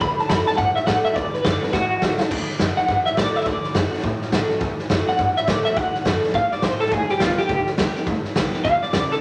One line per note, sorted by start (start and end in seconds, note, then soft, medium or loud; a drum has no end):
0.01 0.17 D2 loud
0.01 0.28 D3 medium
0.01 0.20 B5 loud
0.01 kick loud
0.01 snare soft
0.18 0.30 A5 medium
0.18 muted upright bass stroke medium
0.18 snare soft
0.29 0.45 F#2 medium
0.29 0.46 D3 medium
0.29 0.47 A3 loud
0.29 0.47 D4 loud
0.29 0.47 F#4 medium
0.29 0.47 B5 medium
0.29 kick medium
0.29 snare loud
0.29 hi-hat pedal medium
0.47 0.59 D4 soft
0.47 0.59 F#4 medium
0.47 0.57 A5 loud
0.47 muted upright bass stroke medium
0.47 snare soft
0.53 snare soft
0.57 0.74 G2 medium
0.57 1.14 A2 medium
0.57 0.75 F#5 loud
0.57 kick loud
0.57 snare soft
0.76 0.86 E5 medium
0.76 snare soft
0.87 1.03 A2 medium
0.87 1.04 D3 loud
0.87 1.04 A3 loud
0.87 1.05 D4 loud
0.87 1.03 F#4 loud
0.87 1.04 F#5 medium
0.87 kick medium
0.87 snare loud
0.87 hi-hat pedal medium
1.05 1.17 D4 medium
1.05 1.16 F#4 medium
1.05 1.15 E5 medium
1.05 muted upright bass stroke medium
1.05 snare soft
1.15 1.31 D2 loud
1.15 1.43 D3 medium
1.15 1.34 D5 loud
1.15 kick loud
1.15 snare soft
1.33 1.45 B4 medium
1.33 muted upright bass stroke medium
1.33 snare soft
1.45 1.60 F#2 medium
1.45 1.62 D3 medium
1.45 1.62 A3 medium
1.45 1.62 D4 medium
1.45 1.61 F#4 medium
1.45 1.61 D5 medium
1.45 kick medium
1.45 snare loud
1.45 hi-hat pedal medium
1.61 1.74 D4 soft
1.61 1.73 F#4 medium
1.61 1.73 B4 medium
1.61 snare soft
1.68 snare soft
1.73 1.89 A2 loud
1.73 2.29 A2 medium
1.73 2.29 F#4 loud
1.73 kick loud
1.73 snare medium
1.91 muted upright bass stroke medium
2.02 2.18 B2 medium
2.02 2.19 D3 loud
2.02 2.19 A3 medium
2.02 2.19 D4 loud
2.02 2.18 F#4 loud
2.02 kick medium
2.02 snare medium
2.02 hi-hat pedal medium
2.19 2.31 D4 soft
2.19 2.30 F#4 medium
2.19 muted upright bass stroke medium
2.19 snare medium
2.31 2.47 D2 loud
2.31 2.58 D3 medium
2.31 kick loud
2.31 snare soft
2.31 crash loud
2.48 muted upright bass stroke medium
2.48 snare soft
2.59 2.75 F#2 medium
2.59 2.77 D3 medium
2.59 2.77 A3 medium
2.59 2.77 D4 medium
2.59 2.77 F#4 medium
2.59 kick medium
2.59 snare loud
2.59 hi-hat pedal medium
2.77 2.89 D4 soft
2.77 2.89 F#4 medium
2.77 3.05 F#5 medium
2.77 muted upright bass stroke medium
2.77 snare soft
2.88 3.04 G2 medium
2.88 3.45 A2 medium
2.88 kick loud
2.88 snare soft
3.06 3.17 E5 medium
3.06 muted upright bass stroke medium
3.06 snare soft
3.17 3.33 A2 medium
3.17 3.45 D3 medium
3.17 3.46 A3 loud
3.17 3.46 D4 loud
3.17 3.46 F#4 loud
3.17 3.36 D5 medium
3.17 kick medium
3.17 snare loud
3.17 hi-hat pedal medium
3.34 3.46 E5 medium
3.34 muted upright bass stroke medium
3.34 snare soft
3.41 snare soft
3.46 3.62 D2 loud
3.46 3.72 D3 loud
3.46 3.74 D5 loud
3.46 kick loud
3.46 snare soft
3.63 muted upright bass stroke medium
3.63 snare soft
3.73 3.91 F#2 medium
3.73 3.91 D3 medium
3.73 3.92 A3 medium
3.73 3.91 D4 medium
3.73 3.90 F#4 medium
3.73 kick medium
3.73 snare loud
3.73 hi-hat pedal medium
3.91 4.03 D4 soft
3.91 4.03 F#4 medium
3.91 snare soft
3.98 snare soft
4.03 4.59 A2 medium
4.03 4.19 A2 medium
4.03 kick loud
4.03 snare soft
4.22 snare soft
4.32 4.48 B2 medium
4.32 4.49 D3 medium
4.32 4.49 A3 medium
4.32 4.49 D4 loud
4.32 4.48 F#4 loud
4.32 kick medium
4.32 snare loud
4.32 hi-hat pedal medium
4.49 4.61 D4 soft
4.49 4.61 F#4 medium
4.49 muted upright bass stroke medium
4.49 snare soft
4.61 4.77 D2 loud
4.61 4.88 D3 loud
4.61 kick loud
4.61 snare soft
4.79 muted upright bass stroke medium
4.79 snare soft
4.89 5.06 F#2 medium
4.89 5.07 D3 medium
4.89 5.07 A3 medium
4.89 5.07 D4 medium
4.89 5.05 F#4 loud
4.89 kick medium
4.89 snare loud
4.89 hi-hat pedal medium
5.06 5.19 D4 soft
5.06 5.18 F#4 medium
5.06 5.36 F#5 medium
5.06 muted upright bass stroke medium
5.06 snare soft
5.18 5.34 G2 medium
5.18 5.74 A2 medium
5.18 kick loud
5.18 snare soft
5.36 5.48 E5 medium
5.36 muted upright bass stroke medium
5.36 snare soft
5.46 5.63 A2 medium
5.46 5.64 D3 medium
5.46 5.64 A3 medium
5.46 5.65 D4 loud
5.46 5.63 F#4 loud
5.46 5.64 D5 loud
5.46 kick medium
5.46 snare loud
5.46 hi-hat pedal loud
5.65 5.77 D4 soft
5.65 5.76 F#4 medium
5.65 5.77 E5 medium
5.65 muted upright bass stroke medium
5.65 snare soft
5.76 5.92 D2 medium
5.76 6.04 D3 loud
5.76 6.05 F#5 loud
5.76 kick loud
5.76 snare soft
5.95 muted upright bass stroke medium
5.95 snare soft
6.05 6.21 F#2 medium
6.05 6.22 D3 medium
6.05 6.22 A3 medium
6.05 6.23 D4 medium
6.05 6.22 F#4 medium
6.05 kick medium
6.05 snare loud
6.05 hi-hat pedal medium
6.23 6.35 D4 soft
6.23 6.34 F#4 medium
6.23 muted upright bass stroke medium
6.23 snare soft
6.29 snare soft
6.34 6.50 A2 medium
6.34 6.62 B2 medium
6.34 6.52 F5 loud
6.34 kick loud
6.34 snare soft
6.51 6.63 D5 medium
6.51 muted upright bass stroke medium
6.51 snare soft
6.62 6.91 A2 loud
6.62 6.79 B2 medium
6.62 6.80 C5 loud
6.62 kick medium
6.62 snare loud
6.62 hi-hat pedal loud
6.80 6.91 A4 medium
6.80 muted upright bass stroke medium
6.80 snare soft
6.86 snare soft
6.91 7.07 G1 medium
6.91 7.47 G2 medium
6.91 7.09 G#4 medium
6.91 kick loud
6.91 snare soft
7.09 7.21 G4 medium
7.09 muted upright bass stroke medium
7.09 snare soft
7.20 7.36 B1 medium
7.20 7.38 D3 medium
7.20 7.38 G3 medium
7.20 7.38 B3 loud
7.20 7.38 F4 medium
7.20 7.37 G4 loud
7.20 kick medium
7.20 snare loud
7.20 hi-hat pedal medium
7.38 7.50 B3 medium
7.38 7.66 G4 medium
7.38 7.49 G4 medium
7.38 muted upright bass stroke medium
7.38 snare soft
7.49 7.65 B1 medium
7.49 7.76 D3 medium
7.49 kick loud
7.49 snare soft
7.67 snare soft
7.78 7.94 D2 medium
7.78 7.95 D3 medium
7.78 7.95 G3 loud
7.78 7.95 B3 loud
7.78 7.95 G4 loud
7.78 kick medium
7.78 snare loud
7.78 hi-hat pedal medium
7.95 8.07 B3 soft
7.95 8.07 G4 medium
7.95 muted upright bass stroke medium
7.95 snare soft
8.06 8.22 G1 medium
8.06 8.62 G2 loud
8.06 kick loud
8.06 snare soft
8.24 muted upright bass stroke medium
8.24 snare soft
8.35 8.51 B1 medium
8.35 8.52 D3 medium
8.35 8.53 G3 medium
8.35 8.53 B3 medium
8.35 8.51 G4 loud
8.35 kick medium
8.35 snare loud
8.35 hi-hat pedal medium
8.53 8.65 B3 soft
8.53 8.64 G4 medium
8.53 muted upright bass stroke medium
8.53 snare soft
8.64 8.80 D2 medium
8.64 8.92 B2 medium
8.64 8.82 F5 loud
8.64 kick loud
8.64 snare soft
8.82 8.92 D5 medium
8.82 muted upright bass stroke medium
8.82 snare soft
8.93 9.09 E2 loud
8.93 9.21 C#3 medium
8.93 9.11 D5 medium
8.93 kick medium
8.93 snare loud
8.93 hi-hat pedal medium
9.11 9.21 A4 medium
9.11 snare soft